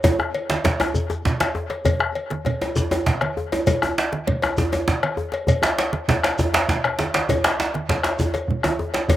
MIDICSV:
0, 0, Header, 1, 5, 480
1, 0, Start_track
1, 0, Tempo, 301811
1, 62, Time_signature, 12, 3, 24, 8
1, 14578, End_track
2, 0, Start_track
2, 0, Title_t, "Bombo"
2, 67, Note_on_c, 9, 43, 92
2, 226, Note_off_c, 9, 43, 0
2, 312, Note_on_c, 9, 37, 73
2, 471, Note_off_c, 9, 37, 0
2, 803, Note_on_c, 9, 37, 27
2, 962, Note_off_c, 9, 37, 0
2, 1044, Note_on_c, 9, 43, 97
2, 1203, Note_off_c, 9, 43, 0
2, 1288, Note_on_c, 9, 37, 75
2, 1447, Note_off_c, 9, 37, 0
2, 1762, Note_on_c, 9, 37, 31
2, 1921, Note_off_c, 9, 37, 0
2, 2003, Note_on_c, 9, 43, 91
2, 2162, Note_off_c, 9, 43, 0
2, 2241, Note_on_c, 9, 37, 81
2, 2400, Note_off_c, 9, 37, 0
2, 2952, Note_on_c, 9, 43, 97
2, 3111, Note_off_c, 9, 43, 0
2, 3187, Note_on_c, 9, 37, 85
2, 3346, Note_off_c, 9, 37, 0
2, 3667, Note_on_c, 9, 37, 30
2, 3826, Note_off_c, 9, 37, 0
2, 4645, Note_on_c, 9, 37, 30
2, 4804, Note_off_c, 9, 37, 0
2, 4873, Note_on_c, 9, 43, 96
2, 5032, Note_off_c, 9, 43, 0
2, 5106, Note_on_c, 9, 37, 72
2, 5265, Note_off_c, 9, 37, 0
2, 5834, Note_on_c, 9, 43, 92
2, 5993, Note_off_c, 9, 43, 0
2, 6077, Note_on_c, 9, 37, 82
2, 6236, Note_off_c, 9, 37, 0
2, 6564, Note_on_c, 9, 37, 32
2, 6723, Note_off_c, 9, 37, 0
2, 6808, Note_on_c, 9, 43, 97
2, 6967, Note_off_c, 9, 43, 0
2, 7053, Note_on_c, 9, 37, 75
2, 7212, Note_off_c, 9, 37, 0
2, 7520, Note_on_c, 9, 37, 28
2, 7679, Note_off_c, 9, 37, 0
2, 7763, Note_on_c, 9, 43, 88
2, 7922, Note_off_c, 9, 43, 0
2, 8000, Note_on_c, 9, 37, 75
2, 8159, Note_off_c, 9, 37, 0
2, 8710, Note_on_c, 9, 43, 85
2, 8869, Note_off_c, 9, 43, 0
2, 8949, Note_on_c, 9, 37, 83
2, 9108, Note_off_c, 9, 37, 0
2, 9195, Note_on_c, 9, 37, 32
2, 9354, Note_off_c, 9, 37, 0
2, 9441, Note_on_c, 9, 37, 31
2, 9600, Note_off_c, 9, 37, 0
2, 9672, Note_on_c, 9, 43, 95
2, 9831, Note_off_c, 9, 43, 0
2, 9916, Note_on_c, 9, 37, 81
2, 10075, Note_off_c, 9, 37, 0
2, 10630, Note_on_c, 9, 43, 93
2, 10789, Note_off_c, 9, 43, 0
2, 10882, Note_on_c, 9, 37, 82
2, 11041, Note_off_c, 9, 37, 0
2, 11595, Note_on_c, 9, 43, 99
2, 11754, Note_off_c, 9, 43, 0
2, 11840, Note_on_c, 9, 37, 92
2, 11999, Note_off_c, 9, 37, 0
2, 12329, Note_on_c, 9, 37, 31
2, 12488, Note_off_c, 9, 37, 0
2, 12546, Note_on_c, 9, 43, 100
2, 12705, Note_off_c, 9, 43, 0
2, 12778, Note_on_c, 9, 37, 74
2, 12937, Note_off_c, 9, 37, 0
2, 13259, Note_on_c, 9, 37, 32
2, 13418, Note_off_c, 9, 37, 0
2, 13485, Note_on_c, 9, 43, 84
2, 13644, Note_off_c, 9, 43, 0
2, 13730, Note_on_c, 9, 37, 70
2, 13889, Note_off_c, 9, 37, 0
2, 14446, Note_on_c, 9, 43, 90
2, 14578, Note_off_c, 9, 43, 0
2, 14578, End_track
3, 0, Start_track
3, 0, Title_t, "Djembe"
3, 60, Note_on_c, 9, 64, 72
3, 63, Note_on_c, 9, 63, 91
3, 219, Note_off_c, 9, 64, 0
3, 222, Note_off_c, 9, 63, 0
3, 300, Note_on_c, 9, 62, 21
3, 300, Note_on_c, 9, 63, 54
3, 459, Note_off_c, 9, 62, 0
3, 459, Note_off_c, 9, 63, 0
3, 788, Note_on_c, 9, 62, 58
3, 789, Note_off_c, 9, 62, 0
3, 789, Note_on_c, 9, 62, 79
3, 948, Note_off_c, 9, 62, 0
3, 1022, Note_on_c, 9, 63, 77
3, 1031, Note_on_c, 9, 62, 81
3, 1181, Note_off_c, 9, 63, 0
3, 1190, Note_off_c, 9, 62, 0
3, 1270, Note_on_c, 9, 63, 96
3, 1429, Note_off_c, 9, 63, 0
3, 1501, Note_on_c, 9, 64, 77
3, 1660, Note_off_c, 9, 64, 0
3, 1747, Note_on_c, 9, 62, 62
3, 1747, Note_on_c, 9, 63, 57
3, 1906, Note_off_c, 9, 62, 0
3, 1906, Note_off_c, 9, 63, 0
3, 1991, Note_on_c, 9, 62, 71
3, 2150, Note_off_c, 9, 62, 0
3, 2232, Note_on_c, 9, 62, 75
3, 2233, Note_off_c, 9, 62, 0
3, 2233, Note_on_c, 9, 62, 22
3, 2392, Note_off_c, 9, 62, 0
3, 2463, Note_on_c, 9, 63, 82
3, 2622, Note_off_c, 9, 63, 0
3, 2700, Note_on_c, 9, 62, 66
3, 2859, Note_off_c, 9, 62, 0
3, 2940, Note_on_c, 9, 64, 80
3, 3099, Note_off_c, 9, 64, 0
3, 3171, Note_on_c, 9, 62, 22
3, 3171, Note_on_c, 9, 63, 55
3, 3330, Note_off_c, 9, 62, 0
3, 3330, Note_off_c, 9, 63, 0
3, 3664, Note_on_c, 9, 62, 62
3, 3823, Note_off_c, 9, 62, 0
3, 3893, Note_on_c, 9, 63, 70
3, 4052, Note_off_c, 9, 63, 0
3, 4159, Note_on_c, 9, 63, 73
3, 4318, Note_off_c, 9, 63, 0
3, 4386, Note_on_c, 9, 64, 71
3, 4393, Note_on_c, 9, 63, 76
3, 4545, Note_off_c, 9, 64, 0
3, 4552, Note_off_c, 9, 63, 0
3, 4631, Note_on_c, 9, 62, 58
3, 4631, Note_on_c, 9, 63, 57
3, 4633, Note_off_c, 9, 63, 0
3, 4633, Note_on_c, 9, 63, 79
3, 4790, Note_off_c, 9, 62, 0
3, 4792, Note_off_c, 9, 63, 0
3, 4872, Note_on_c, 9, 62, 77
3, 5031, Note_off_c, 9, 62, 0
3, 5129, Note_on_c, 9, 62, 22
3, 5288, Note_off_c, 9, 62, 0
3, 5360, Note_on_c, 9, 63, 68
3, 5519, Note_off_c, 9, 63, 0
3, 5607, Note_on_c, 9, 62, 51
3, 5610, Note_on_c, 9, 63, 75
3, 5766, Note_off_c, 9, 62, 0
3, 5769, Note_off_c, 9, 63, 0
3, 5844, Note_on_c, 9, 64, 60
3, 5852, Note_on_c, 9, 63, 70
3, 6003, Note_off_c, 9, 64, 0
3, 6011, Note_off_c, 9, 63, 0
3, 6079, Note_on_c, 9, 62, 21
3, 6079, Note_on_c, 9, 63, 47
3, 6089, Note_off_c, 9, 63, 0
3, 6089, Note_on_c, 9, 63, 75
3, 6238, Note_off_c, 9, 62, 0
3, 6249, Note_off_c, 9, 63, 0
3, 6332, Note_on_c, 9, 62, 85
3, 6491, Note_off_c, 9, 62, 0
3, 6558, Note_on_c, 9, 62, 51
3, 6717, Note_off_c, 9, 62, 0
3, 7052, Note_on_c, 9, 63, 74
3, 7211, Note_off_c, 9, 63, 0
3, 7283, Note_on_c, 9, 64, 74
3, 7286, Note_on_c, 9, 63, 84
3, 7442, Note_off_c, 9, 64, 0
3, 7445, Note_off_c, 9, 63, 0
3, 7512, Note_on_c, 9, 62, 56
3, 7512, Note_on_c, 9, 63, 56
3, 7520, Note_off_c, 9, 63, 0
3, 7520, Note_on_c, 9, 63, 76
3, 7671, Note_off_c, 9, 62, 0
3, 7679, Note_off_c, 9, 63, 0
3, 7756, Note_on_c, 9, 62, 76
3, 7915, Note_off_c, 9, 62, 0
3, 7990, Note_on_c, 9, 62, 23
3, 8149, Note_off_c, 9, 62, 0
3, 8225, Note_on_c, 9, 63, 74
3, 8384, Note_off_c, 9, 63, 0
3, 8460, Note_on_c, 9, 62, 57
3, 8619, Note_off_c, 9, 62, 0
3, 8700, Note_on_c, 9, 64, 76
3, 8859, Note_off_c, 9, 64, 0
3, 8939, Note_on_c, 9, 62, 22
3, 8939, Note_on_c, 9, 63, 59
3, 8958, Note_off_c, 9, 62, 0
3, 8958, Note_on_c, 9, 62, 95
3, 9098, Note_off_c, 9, 63, 0
3, 9117, Note_off_c, 9, 62, 0
3, 9201, Note_on_c, 9, 62, 75
3, 9360, Note_off_c, 9, 62, 0
3, 9430, Note_on_c, 9, 62, 58
3, 9589, Note_off_c, 9, 62, 0
3, 9677, Note_on_c, 9, 63, 69
3, 9681, Note_on_c, 9, 62, 81
3, 9836, Note_off_c, 9, 63, 0
3, 9840, Note_off_c, 9, 62, 0
3, 9917, Note_on_c, 9, 62, 22
3, 9927, Note_off_c, 9, 62, 0
3, 9927, Note_on_c, 9, 62, 78
3, 10086, Note_off_c, 9, 62, 0
3, 10166, Note_on_c, 9, 63, 83
3, 10166, Note_on_c, 9, 64, 66
3, 10325, Note_off_c, 9, 63, 0
3, 10325, Note_off_c, 9, 64, 0
3, 10394, Note_on_c, 9, 62, 56
3, 10394, Note_on_c, 9, 63, 53
3, 10404, Note_off_c, 9, 62, 0
3, 10404, Note_on_c, 9, 62, 99
3, 10553, Note_off_c, 9, 63, 0
3, 10563, Note_off_c, 9, 62, 0
3, 10642, Note_on_c, 9, 62, 79
3, 10801, Note_off_c, 9, 62, 0
3, 11111, Note_on_c, 9, 62, 72
3, 11121, Note_on_c, 9, 63, 61
3, 11270, Note_off_c, 9, 62, 0
3, 11280, Note_off_c, 9, 63, 0
3, 11359, Note_on_c, 9, 62, 82
3, 11518, Note_off_c, 9, 62, 0
3, 11595, Note_on_c, 9, 63, 74
3, 11597, Note_on_c, 9, 64, 55
3, 11754, Note_off_c, 9, 63, 0
3, 11756, Note_off_c, 9, 64, 0
3, 11837, Note_on_c, 9, 62, 93
3, 11840, Note_off_c, 9, 62, 0
3, 11840, Note_on_c, 9, 62, 19
3, 11840, Note_on_c, 9, 63, 46
3, 11999, Note_off_c, 9, 62, 0
3, 11999, Note_off_c, 9, 63, 0
3, 12083, Note_on_c, 9, 62, 86
3, 12242, Note_off_c, 9, 62, 0
3, 12314, Note_on_c, 9, 62, 50
3, 12473, Note_off_c, 9, 62, 0
3, 12554, Note_on_c, 9, 62, 75
3, 12568, Note_on_c, 9, 63, 59
3, 12713, Note_off_c, 9, 62, 0
3, 12727, Note_off_c, 9, 63, 0
3, 12790, Note_on_c, 9, 62, 75
3, 12950, Note_off_c, 9, 62, 0
3, 13036, Note_on_c, 9, 64, 65
3, 13037, Note_on_c, 9, 63, 77
3, 13195, Note_off_c, 9, 64, 0
3, 13196, Note_off_c, 9, 63, 0
3, 13271, Note_on_c, 9, 62, 57
3, 13271, Note_on_c, 9, 63, 52
3, 13430, Note_off_c, 9, 62, 0
3, 13430, Note_off_c, 9, 63, 0
3, 13742, Note_on_c, 9, 63, 104
3, 13901, Note_off_c, 9, 63, 0
3, 13985, Note_on_c, 9, 63, 74
3, 14144, Note_off_c, 9, 63, 0
3, 14220, Note_on_c, 9, 62, 49
3, 14223, Note_off_c, 9, 62, 0
3, 14223, Note_on_c, 9, 62, 78
3, 14382, Note_off_c, 9, 62, 0
3, 14459, Note_on_c, 9, 64, 67
3, 14470, Note_on_c, 9, 63, 71
3, 14578, Note_off_c, 9, 63, 0
3, 14578, Note_off_c, 9, 64, 0
3, 14578, End_track
4, 0, Start_track
4, 0, Title_t, "Shekere"
4, 58, Note_on_c, 9, 82, 48
4, 217, Note_off_c, 9, 82, 0
4, 1511, Note_on_c, 9, 82, 54
4, 1670, Note_off_c, 9, 82, 0
4, 1750, Note_on_c, 9, 82, 18
4, 1909, Note_off_c, 9, 82, 0
4, 2948, Note_on_c, 9, 82, 56
4, 3107, Note_off_c, 9, 82, 0
4, 4388, Note_on_c, 9, 82, 67
4, 4547, Note_off_c, 9, 82, 0
4, 4636, Note_on_c, 9, 82, 18
4, 4795, Note_off_c, 9, 82, 0
4, 5834, Note_on_c, 9, 82, 60
4, 5993, Note_off_c, 9, 82, 0
4, 7272, Note_on_c, 9, 82, 66
4, 7431, Note_off_c, 9, 82, 0
4, 7522, Note_on_c, 9, 82, 18
4, 7681, Note_off_c, 9, 82, 0
4, 8720, Note_on_c, 9, 82, 60
4, 8879, Note_off_c, 9, 82, 0
4, 8954, Note_on_c, 9, 82, 19
4, 9113, Note_off_c, 9, 82, 0
4, 9198, Note_on_c, 9, 82, 21
4, 9357, Note_off_c, 9, 82, 0
4, 10153, Note_on_c, 9, 82, 65
4, 10312, Note_off_c, 9, 82, 0
4, 10638, Note_on_c, 9, 82, 18
4, 10797, Note_off_c, 9, 82, 0
4, 11600, Note_on_c, 9, 82, 55
4, 11759, Note_off_c, 9, 82, 0
4, 13022, Note_on_c, 9, 82, 59
4, 13181, Note_off_c, 9, 82, 0
4, 13272, Note_on_c, 9, 82, 18
4, 13431, Note_off_c, 9, 82, 0
4, 14464, Note_on_c, 9, 82, 59
4, 14578, Note_off_c, 9, 82, 0
4, 14578, End_track
5, 0, Start_track
5, 0, Title_t, "Drums"
5, 63, Note_on_c, 9, 56, 65
5, 73, Note_on_c, 9, 64, 74
5, 222, Note_off_c, 9, 56, 0
5, 232, Note_off_c, 9, 64, 0
5, 549, Note_on_c, 9, 56, 52
5, 558, Note_on_c, 9, 63, 29
5, 708, Note_off_c, 9, 56, 0
5, 717, Note_off_c, 9, 63, 0
5, 807, Note_on_c, 9, 63, 69
5, 966, Note_off_c, 9, 63, 0
5, 1025, Note_on_c, 9, 56, 43
5, 1040, Note_on_c, 9, 64, 82
5, 1184, Note_off_c, 9, 56, 0
5, 1199, Note_off_c, 9, 64, 0
5, 1269, Note_on_c, 9, 56, 53
5, 1428, Note_off_c, 9, 56, 0
5, 1762, Note_on_c, 9, 63, 27
5, 1921, Note_off_c, 9, 63, 0
5, 1994, Note_on_c, 9, 64, 72
5, 2153, Note_off_c, 9, 64, 0
5, 2235, Note_on_c, 9, 56, 44
5, 2238, Note_on_c, 9, 63, 61
5, 2394, Note_off_c, 9, 56, 0
5, 2397, Note_off_c, 9, 63, 0
5, 2707, Note_on_c, 9, 56, 45
5, 2713, Note_on_c, 9, 63, 25
5, 2866, Note_off_c, 9, 56, 0
5, 2872, Note_off_c, 9, 63, 0
5, 2949, Note_on_c, 9, 56, 66
5, 2950, Note_on_c, 9, 64, 77
5, 3108, Note_off_c, 9, 56, 0
5, 3109, Note_off_c, 9, 64, 0
5, 3426, Note_on_c, 9, 56, 45
5, 3438, Note_on_c, 9, 63, 25
5, 3585, Note_off_c, 9, 56, 0
5, 3597, Note_off_c, 9, 63, 0
5, 3675, Note_on_c, 9, 63, 62
5, 3834, Note_off_c, 9, 63, 0
5, 3912, Note_on_c, 9, 56, 50
5, 3919, Note_on_c, 9, 64, 79
5, 4071, Note_off_c, 9, 56, 0
5, 4078, Note_off_c, 9, 64, 0
5, 4165, Note_on_c, 9, 56, 52
5, 4324, Note_off_c, 9, 56, 0
5, 4634, Note_on_c, 9, 63, 25
5, 4641, Note_on_c, 9, 56, 51
5, 4793, Note_off_c, 9, 63, 0
5, 4800, Note_off_c, 9, 56, 0
5, 4883, Note_on_c, 9, 64, 72
5, 5042, Note_off_c, 9, 64, 0
5, 5111, Note_on_c, 9, 56, 46
5, 5121, Note_on_c, 9, 63, 59
5, 5270, Note_off_c, 9, 56, 0
5, 5280, Note_off_c, 9, 63, 0
5, 5602, Note_on_c, 9, 63, 23
5, 5603, Note_on_c, 9, 56, 52
5, 5761, Note_off_c, 9, 63, 0
5, 5762, Note_off_c, 9, 56, 0
5, 5836, Note_on_c, 9, 64, 73
5, 5838, Note_on_c, 9, 56, 66
5, 5995, Note_off_c, 9, 64, 0
5, 5997, Note_off_c, 9, 56, 0
5, 6329, Note_on_c, 9, 63, 24
5, 6488, Note_off_c, 9, 63, 0
5, 6564, Note_on_c, 9, 63, 68
5, 6723, Note_off_c, 9, 63, 0
5, 6796, Note_on_c, 9, 56, 50
5, 6800, Note_on_c, 9, 64, 80
5, 6955, Note_off_c, 9, 56, 0
5, 6959, Note_off_c, 9, 64, 0
5, 7036, Note_on_c, 9, 56, 56
5, 7195, Note_off_c, 9, 56, 0
5, 7519, Note_on_c, 9, 56, 51
5, 7526, Note_on_c, 9, 63, 26
5, 7678, Note_off_c, 9, 56, 0
5, 7685, Note_off_c, 9, 63, 0
5, 7755, Note_on_c, 9, 64, 66
5, 7914, Note_off_c, 9, 64, 0
5, 8002, Note_on_c, 9, 56, 49
5, 8003, Note_on_c, 9, 63, 58
5, 8161, Note_off_c, 9, 56, 0
5, 8162, Note_off_c, 9, 63, 0
5, 8484, Note_on_c, 9, 63, 20
5, 8487, Note_on_c, 9, 56, 52
5, 8643, Note_off_c, 9, 63, 0
5, 8646, Note_off_c, 9, 56, 0
5, 8719, Note_on_c, 9, 64, 65
5, 8723, Note_on_c, 9, 56, 63
5, 8878, Note_off_c, 9, 64, 0
5, 8882, Note_off_c, 9, 56, 0
5, 8959, Note_on_c, 9, 63, 23
5, 9118, Note_off_c, 9, 63, 0
5, 9195, Note_on_c, 9, 63, 25
5, 9208, Note_on_c, 9, 56, 55
5, 9354, Note_off_c, 9, 63, 0
5, 9367, Note_off_c, 9, 56, 0
5, 9430, Note_on_c, 9, 63, 69
5, 9589, Note_off_c, 9, 63, 0
5, 9682, Note_on_c, 9, 64, 76
5, 9691, Note_on_c, 9, 56, 45
5, 9841, Note_off_c, 9, 64, 0
5, 9850, Note_off_c, 9, 56, 0
5, 9927, Note_on_c, 9, 56, 52
5, 10086, Note_off_c, 9, 56, 0
5, 10157, Note_on_c, 9, 63, 26
5, 10316, Note_off_c, 9, 63, 0
5, 10399, Note_on_c, 9, 63, 25
5, 10410, Note_on_c, 9, 56, 49
5, 10558, Note_off_c, 9, 63, 0
5, 10569, Note_off_c, 9, 56, 0
5, 10643, Note_on_c, 9, 64, 37
5, 10802, Note_off_c, 9, 64, 0
5, 10891, Note_on_c, 9, 64, 49
5, 10894, Note_on_c, 9, 56, 46
5, 11050, Note_off_c, 9, 64, 0
5, 11053, Note_off_c, 9, 56, 0
5, 11129, Note_on_c, 9, 63, 58
5, 11288, Note_off_c, 9, 63, 0
5, 11365, Note_on_c, 9, 56, 46
5, 11375, Note_on_c, 9, 63, 56
5, 11524, Note_off_c, 9, 56, 0
5, 11534, Note_off_c, 9, 63, 0
5, 11605, Note_on_c, 9, 56, 63
5, 11607, Note_on_c, 9, 64, 68
5, 11765, Note_off_c, 9, 56, 0
5, 11766, Note_off_c, 9, 64, 0
5, 12092, Note_on_c, 9, 63, 24
5, 12251, Note_off_c, 9, 63, 0
5, 12325, Note_on_c, 9, 63, 66
5, 12484, Note_off_c, 9, 63, 0
5, 12554, Note_on_c, 9, 64, 71
5, 12557, Note_on_c, 9, 56, 48
5, 12713, Note_off_c, 9, 64, 0
5, 12716, Note_off_c, 9, 56, 0
5, 12783, Note_on_c, 9, 56, 49
5, 12942, Note_off_c, 9, 56, 0
5, 13261, Note_on_c, 9, 56, 49
5, 13281, Note_on_c, 9, 63, 25
5, 13420, Note_off_c, 9, 56, 0
5, 13440, Note_off_c, 9, 63, 0
5, 13526, Note_on_c, 9, 64, 69
5, 13685, Note_off_c, 9, 64, 0
5, 13740, Note_on_c, 9, 56, 47
5, 13754, Note_on_c, 9, 63, 62
5, 13899, Note_off_c, 9, 56, 0
5, 13913, Note_off_c, 9, 63, 0
5, 14213, Note_on_c, 9, 56, 50
5, 14227, Note_on_c, 9, 63, 24
5, 14372, Note_off_c, 9, 56, 0
5, 14386, Note_off_c, 9, 63, 0
5, 14466, Note_on_c, 9, 56, 70
5, 14468, Note_on_c, 9, 64, 72
5, 14578, Note_off_c, 9, 56, 0
5, 14578, Note_off_c, 9, 64, 0
5, 14578, End_track
0, 0, End_of_file